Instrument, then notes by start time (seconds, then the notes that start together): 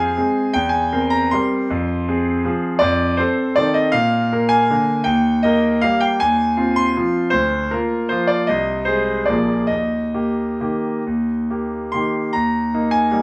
grand piano
Already playing: F2 C4 G#4 F5 G#5
0.17 G#3 C4 G#4
0.53 E2 G5
0.69 G#5
0.93 C4 A#4
1.10 A#5
1.31 G3 C4 A#4 C6
1.70 F2
2.08 C4 G#4
2.44 F3 C4 G#4
2.79 F2 D5
3.17 C4 A4 C5
3.56 D#3 C4 A4 D5
3.74 D#5
3.92 A#2 F5
4.33 A#3 A#4
4.49 G#5
4.70 D3 A#3 A#4
5.04 D#2 G5
5.43 A#3 A#4 D#5
5.81 G3 A#3 A#4 F5
6.00 G5
6.20 D#2 G#5
6.57 C4 F4
6.76 C6
6.96 F3 C4 F4
7.30 D2 C5
7.71 A#3 F4 A#4
8.09 F3 A#3 F4 C5
8.27 D5
8.47 C2 D#5
8.85 G#3 G#4 C5
9.26 A#1 F3 A#3 G#4 D5
9.67 D#2 D#5
10.14 A#3 G4
10.60 D#3 A#3 G4
11.07 D#2
11.51 A#3 G4
11.92 D#3 A#3 G4 C6
12.33 D#2 A#5
12.74 A#3 D#4
12.91 G#5
13.11 G3 A#3 D#4